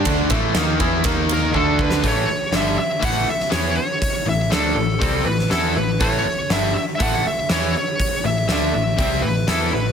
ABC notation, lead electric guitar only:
X:1
M:4/4
L:1/16
Q:1/4=121
K:Amix
V:1 name="Lead electric guitar"
z8 z2 ^A2 =A2 B2 | c4 e2 e2 f2 e2 c2 c2- | c2 e2 A6 B2 A2 B2 | c4 e2 e3/2 e/2 f2 e2 c2 c2- |
c2 e2 e6 B2 A2 B2 |]